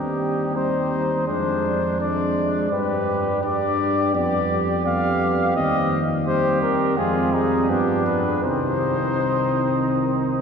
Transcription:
Already playing: D#2 G3 C4 D#4 G4
0.55 G3 C4 D#4 C5
1.28 F2 G#3 D4 C5
2.00 G#3 D4 D5
2.72 G2 G3 D4 G4 B4
3.43 G3 D4 G4 D5
4.14 F2 G3 B3 G4 D5
4.84 G3 B3 G4 F5
5.56 D#2 G3 C4 G4 D#5
6.26 G3 C4 G4 C5
6.62 A#4
6.97 F2 G#3 C4 F4 G#4
7.33 G3 D#4 G#4
7.70 G2 F3 B3 D4 G4
8.06 B4
8.44 C2 D#3 C4 D#4 C5

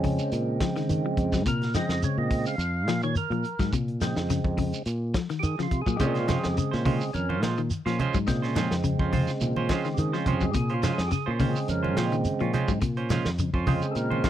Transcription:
Already playing: F2 C#3 G#3 C4 C#4
0.04 C#3, kick, open hi-hat, shekere
0.19 closed hi-hat, shekere
0.32 A#2, closed hi-hat, shekere
0.60 F3, kick, snare, closed hi-hat
0.76 D#3, snare, closed hi-hat, shekere
0.89 D#3, closed hi-hat, shekere
1.06 F3
1.17 F2, kick, closed hi-hat, shekere
1.32 F#3, kick, snare, shekere
1.46 A#2 C3 A#4, kick, closed hi-hat, shekere
1.62 snare, closed hi-hat
1.74 C#3 F3 G#3 C4 D#5, snare, closed hi-hat, shekere
1.89 F2, snare, shekere
2.02 C#3 C#5, closed hi-hat, shekere
2.18 A#2 D#5
2.31 kick, open hi-hat, shekere
2.46 F5, shekere
2.58 F2, closed hi-hat, shekere
2.87 A#2 F3, snare, closed hi-hat
3.02 D#3 C#5, closed hi-hat, shekere
3.15 A#4, muted fingered electric bass stroke, closed hi-hat, shekere
3.30 A#2 F3, closed hi-hat
3.44 closed hi-hat, shekere
3.59 G#2 F#3, kick, snare, closed hi-hat, shekere
3.73 A#2 C3, kick, closed hi-hat, shekere
3.88 closed hi-hat
4.01 C#3 F3 G#3 C4, snare, closed hi-hat, shekere
4.16 F2, snare, shekere
4.30 C#3, snare, closed hi-hat, shekere
4.44 F2, kick
4.58 C#3, kick, open hi-hat, shekere
4.73 closed hi-hat, shekere
4.86 A#2, closed hi-hat, shekere
5.14 F3, kick, snare, closed hi-hat
5.29 D#3, snare, closed hi-hat, shekere
5.39 G4 G#4, closed hi-hat
5.43 D#3, shekere
5.58 C#3 F3, snare
5.63 F4
5.71 C3, kick, closed hi-hat, shekere
5.81 G#4
5.86 A#2 F#3, kick, shekere
5.96 A#2 C#3 G#3 G4, kick, closed hi-hat
6.00 C3 C4 C#4 F4 G#4 C5, shekere
6.14 C#4 F4 C5, snare, closed hi-hat
6.20 F4
6.27 F3 G#3 C#4 F4 C5, snare, closed hi-hat, high conga, low conga, shekere
6.39 G#4
6.43 F2, snare, high conga, shekere
6.53 G4
6.57 C#3 G#4, closed hi-hat, shekere
6.71 A#2 C#4 C5, muted clean electric guitar stroke, snare
6.78 F4
6.85 C#3 G#3 C4 C#4 F4 C5, kick, open hi-hat, high conga, low conga, shekere
6.96 G#4
7.01 shekere
7.13 F2 C#4 A#4, closed hi-hat, high conga, shekere
7.29 C#4 F4 C5, high conga
7.42 A#2 F3 G#3 F4 C5, muted clean electric guitar stroke, snare, closed hi-hat, high conga
7.57 D#3, closed hi-hat, shekere
7.70 muted fingered electric bass stroke, closed hi-hat, shekere
7.86 A#2 F3 C#4 F4 C5, snare, closed hi-hat
7.99 G#3 C#4 F4 C5, closed hi-hat, high conga, low conga, shekere
8.14 G#2 F#3, kick, closed hi-hat, shekere
8.27 A#2 C3 C#3 G#3 C4, kick, snare, closed hi-hat, shekere
8.42 C#4 F4 C5, snare, closed hi-hat
8.56 F3 G#3 C#4 F4 C5, snare, closed hi-hat, high conga, shekere
8.71 F2, snare, shekere
8.84 C#3, closed hi-hat, shekere
8.99 F2 C#4 F4 C5, kick
9.12 C#3 G#3 F4 C5, muted clean electric guitar stroke, kick, open hi-hat, high conga, low conga, shekere
9.27 snare, closed hi-hat, shekere
9.41 A#2, closed hi-hat, high conga, low conga, shekere
9.56 C#4 F4 C5, high conga
9.69 F3 G#3 C#4 F4 C5, kick, snare, closed hi-hat, high conga
9.84 D#3, snare, closed hi-hat, shekere
9.94 G4, closed hi-hat, shekere
9.98 D#3 G#4
10.13 F3 C#4 F4 C5, snare
10.18 F4
10.26 F2 G#3 C#4 F4 C5, kick, closed hi-hat, high conga, low conga, shekere
10.37 G#4, shekere
10.41 F#3, kick
10.51 A#2 C3 G4, kick, closed hi-hat, shekere
10.56 G#4
10.69 C#4 F4 C5, closed hi-hat
10.74 F4
10.83 F3 G#3 C#4 F4 C5, snare, closed hi-hat, high conga, low conga, shekere
10.93 G#4
10.98 F2, snare, shekere
11.08 G4, snare, closed hi-hat
11.12 C#3 G#4, shekere
11.26 A#2 C#4 F4 C5
11.31 F4
11.39 C#3 G#3 C4 C#4 F4 C5, muted clean electric guitar stroke, kick, open hi-hat, high conga, low conga, shekere
11.50 G#4
11.56 shekere
11.68 F2 C#4 A#4, closed hi-hat, high conga, shekere
11.83 C#4 F4 C5, high conga
11.97 A#2 F3 G#3 C#4 F4 C5, snare, closed hi-hat, high conga
12.12 D#3, closed hi-hat, shekere
12.25 muted fingered electric bass stroke, closed hi-hat, shekere
12.40 A#2 F3 C#4 F4, closed hi-hat
12.53 C#3 G#3 C4 C#4 F4 C5, closed hi-hat, low conga, shekere
12.68 G#2 F#3, kick, closed hi-hat, shekere
12.81 A#2 C3, kick, closed hi-hat, shekere
12.97 C#4 F4 C5, closed hi-hat
13.10 F3 G#3 C#4 F4 C5, snare, closed hi-hat, high conga, low conga, shekere
13.25 F2, snare, high conga, shekere
13.38 C#3, closed hi-hat, shekere
13.53 F2 C#4 F4 C5, kick
13.66 C#3 G#3 C4 C#4 F4 C5, kick, open hi-hat, high conga, low conga, shekere
13.82 G#4, closed hi-hat, shekere
13.91 A4
13.95 A#2 A#4, closed hi-hat, shekere
14.10 C#4 F4 C5, high conga
14.24 F3 G#3 C#4 F4 C5, kick, snare, closed hi-hat, high conga

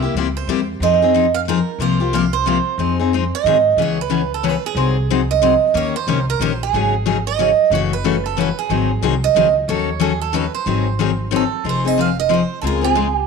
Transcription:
Already playing: E5
0.02 A#3 E4 G4
0.14 C#2 C3 G3 A#3 E4 G4
0.37 C5
0.47 E2 C3 G3 A#3 E4 G4
0.80 F2 F3 C4 D#4 G#4 D#5
1.02 C4 D#4 G#4
1.14 F3 C4 D#4 G#4
1.34 F5
1.48 F3 C4 D#4 G#4 A#4
1.79 C2 C3 F3 A#3 F4 G4 C5
2.00 A#3 F4 G4
2.13 C3 F3 A#3 F4 G4 F5
2.33 C5
2.46 C3 F3 A#3 F4 G4
2.78 F2 F3 C4 D#4 G#4
2.99 C4 D#4 G#4
3.13 F3 C4 D#4 G#4
3.35 D#5
3.44 G#2 D#3 F#3 C4 D#4 G#4
3.76 C#2 C#3 E3 B3 C#4 G#4
3.82 C#5
4.01 B4
4.10 C#3 E3 B3 C#4 G#4
4.34 A4
4.43 C#3 E3 B3 C#4 G#4
4.48 B4
4.66 G#4
4.75 C2 C3 F#3 C4 D#4 G#4 C5
5.10 C3 F#3 C4 D#4 G#4 C5
5.31 D#5
5.42 C3 F#3 C4 D#4 G#4 C5
5.74 D#2 D#3 A#3 C#4 G4 A#4 C#5
5.96 C5
6.07 C2 D#3 A#3 C#4 G4 A#4
6.30 A#4
6.39 A#1 D#3 A#3 C#4 G4 A#4 C5
6.63 G#4
6.73 G#1 C#3 F#3 C#4 D#4 G#4
7.06 C#3 F#3 C#4 D#4 G#4
7.27 D#5
7.39 C#3 F#3 C#4 D#4 G#4
7.70 F#1 C#3 E3 A3 C#4 F#4
7.75 C#5
7.93 B4
8.04 C#3 E3 A3 C#4 F#4
8.26 A4
8.37 C#3 E3 A3 C#4 F#4 B4
8.59 G#4
8.70 G#1 D#3 F#3 C4 D#4 G#4
9.02 C2 D#3 F#3 C4 D#4 G#4
9.24 D#5
9.35 C#2 D#3 F#3 C4 D#4 G#4
9.68 D#2 D#3 F#3 C#4 D#4 A4 C#5
10.00 D#3 F#3 C#4 D#4 G#4 A4
10.21 A4
10.33 D#3 F#3 C#4 D#4 A4 B4
10.54 C5
10.66 G#1 D#3 F#3 C4 D#4 G#4
10.99 D#3 F#3 C4 D#4 G#4
11.31 D#3 F#3 C4 D#4 G#4
11.36 A4
11.64 F1 F3 C4 D#4 G#4
11.69 C5
11.85 C4 D#4 G#4 D#5
11.98 F3 C4 D#4 G#4 F5
12.20 D#5
12.29 F3 C4 D#4 G#4
12.34 C5
12.62 C#2 C#3 G#3 C4 F4 G#4 A4
12.67 A#4
12.81 C4 F4 G#4
12.95 C#3 G#3 C4 F4 G#4
13.15 G4

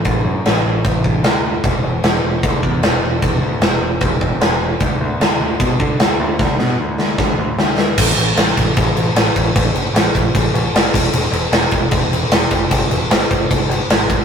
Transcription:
0.05 A1, kick, crash
0.25 F#2
0.45 A1, snare, crash
0.65 A1
0.85 A1, kick, crash
1.04 A1, kick
1.23 D2, snare, crash
1.64 E1, kick, crash
1.83 E1
2.03 E1, snare, crash
2.22 E1
2.43 D2, kick, crash
2.63 E2, kick
2.82 E1, snare, crash
3.02 E1
3.22 E1, kick, crash
3.41 D2
3.61 E1, snare, crash
3.80 E1
4.01 E1, kick, crash
4.21 E1, kick
4.40 E1, snare, crash
4.80 D2, kick, crash
5.01 D2
5.20 D2, snare, crash
5.40 D2
5.60 B2, kick, crash
5.80 D3, kick
5.99 D2, snare, crash
6.19 D2
6.39 D2, kick, snare
6.59 B2, snare
6.80 D2
6.98 D2, snare
7.18 D2, kick, snare
7.39 D2
7.58 D2, snare
7.78 snare
7.98 A1, kick, crash
8.17 A1, crash
8.37 A1, snare, crash
8.57 A1, kick, crash
8.77 A1, kick, crash
8.95 A1, crash
9.15 A1, snare, crash
9.36 A1, kick, crash
9.56 A1, kick, crash
9.73 F#1, crash
9.94 A1, snare, crash
10.15 A1, kick, crash
10.35 A1, kick, crash
10.54 A1, crash
10.74 F#1, snare, crash
10.94 E1, kick, crash
11.12 E1, crash
11.31 E1, crash
11.50 E1, snare, crash
11.71 E1, kick, crash
11.91 E1, kick, crash
12.09 E1, crash
12.30 E1, snare, crash
12.51 F#1, kick, crash
12.71 G1, kick, crash
12.90 E1, crash
13.10 G1, snare, crash
13.31 G1, kick, crash
13.51 G1, kick, crash
13.69 G1, crash
13.90 G#1, snare, crash
14.10 kick, crash

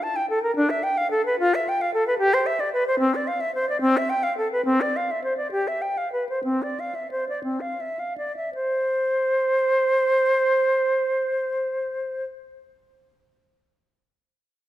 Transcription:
0.03 A5
0.16 G5
0.30 A4
0.43 A#4
0.56 D4
0.70 E5
0.83 G5
0.98 F5
1.11 A4
1.26 B4
1.39 F4
1.55 E5
1.69 G5
1.81 F5
1.94 A4
2.07 B4
2.18 G4
2.34 C5
2.46 E5
2.60 D5
2.73 B4
2.87 C5
2.99 C4
3.15 D5
3.27 F5
3.41 E5
3.55 C5
3.69 D5
3.81 C4
3.97 E5
4.10 G5
4.23 F5
4.38 A4
4.52 B4
4.65 C4
4.81 D5
4.96 F5
5.11 E5
5.24 C5
5.37 D5
5.51 G4
5.68 E5
5.82 G5
5.98 F5
6.12 B4
6.29 C5
6.44 C4
6.63 D5
6.80 F5
6.95 E5
7.11 C5
7.29 D5
7.44 C4
7.61 F5
7.80 E5
7.99 F5
8.18 D5
8.36 E5
8.54 C5

